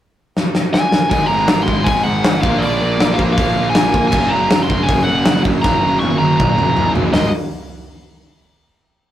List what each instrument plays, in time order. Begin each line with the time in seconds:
0.37 snare
0.55 snare
0.74 lead electric guitar G#5, snare
0.92 snare
1.10 picked electric bass G#1, distorted electric guitar G#2 D#3 G#3, lead electric guitar G#5, kick, open hi-hat
1.26 distorted electric guitar G#2 D#3, lead electric guitar A#5
1.31 picked electric bass G#1, distorted electric guitar G#3
1.48 picked electric bass G#1, distorted electric guitar G#2 D#3 G#3, snare, open hi-hat
1.63 lead electric guitar C6
1.68 picked electric bass G#1, distorted electric guitar G#2 D#3 G#3, kick
1.84 picked electric bass G#1, distorted electric guitar G#2 D#3, lead electric guitar G#5, kick, open hi-hat
1.88 distorted electric guitar G#3
2.03 picked electric bass G#1, distorted electric guitar G#2 D#3 G#3, lead electric guitar F#5
2.24 picked electric bass G#1, distorted electric guitar G#2 D#3 G#3, snare, open hi-hat
2.42 picked electric bass A#1, distorted electric guitar A#2 F3 A#3, lead electric guitar F5, kick
2.58 lead electric guitar D5
2.62 picked electric bass A#1, distorted electric guitar A#2 F3 A#3, open hi-hat
2.77 lead electric guitar D5
2.82 picked electric bass A#1, distorted electric guitar A#2 F3 A#3
3.00 picked electric bass A#1, distorted electric guitar A#2 F3 A#3, snare, open hi-hat
3.14 lead electric guitar F5
3.19 picked electric bass A#1, distorted electric guitar A#2 F3 A#3, kick
3.33 lead electric guitar F5
3.37 picked electric bass A#1, distorted electric guitar A#2 F3 A#3, kick, open hi-hat
3.59 picked electric bass A#1, distorted electric guitar A#2 F3 A#3
3.70 lead electric guitar G#5
3.75 picked electric bass A#1, distorted electric guitar A#2 F3 A#3, snare, open hi-hat
3.94 picked electric bass A#1, distorted electric guitar A#2 F3, kick
3.98 distorted electric guitar A#3
4.07 lead electric guitar G#5
4.12 picked electric bass F#1, distorted electric guitar F#2 C#3 F#3, kick, crash
4.28 lead electric guitar A#5
4.32 picked electric bass F#1, distorted electric guitar F#2 C#3 F#3
4.51 picked electric bass F#1, distorted electric guitar F#2 C#3 F#3, snare, open hi-hat
4.63 lead electric guitar C6
4.68 picked electric bass F#1, distorted electric guitar F#2 C#3 F#3, kick
4.72 distorted electric guitar F#3
4.83 lead electric guitar G#5
4.89 picked electric bass F#1, distorted electric guitar F#2 C#3 F#3, kick, open hi-hat
5.04 lead electric guitar F#5
5.08 picked electric bass F#1, distorted electric guitar F#2 C#3 F#3
5.25 picked electric bass F#1, distorted electric guitar F#2 C#3 F#3, snare, open hi-hat
5.45 picked electric bass F#1, distorted electric guitar F#2 C#3 F#3, kick
5.62 picked electric bass F#1, distorted electric guitar F#2 C#3, lead electric guitar A#5, kick, snare
5.66 distorted electric guitar F#3
5.82 picked electric bass F#1, distorted electric guitar F#2 C#3 F#3
5.99 picked electric bass F#1, lead electric guitar C#6, high tom
6.03 distorted electric guitar F#2 C#3 F#3
6.18 picked electric bass F#1, distorted electric guitar F#2, lead electric guitar A#5
6.22 distorted electric guitar C#3 F#3
6.38 picked electric bass F#1, distorted electric guitar F#2 C#3 F#3, lead electric guitar A#5, kick, mid tom
6.58 picked electric bass F#1, distorted electric guitar F#2 C#3 F#3, mid tom
6.77 picked electric bass F#1, distorted electric guitar F#2 C#3 F#3, floor tom
6.95 picked electric bass F#1, distorted electric guitar F#2 C#3 F#3, floor tom
7.13 picked electric bass G#1, distorted electric guitar G#2 D#3 G#3, lead electric guitar D#5, snare, floor tom, open hi-hat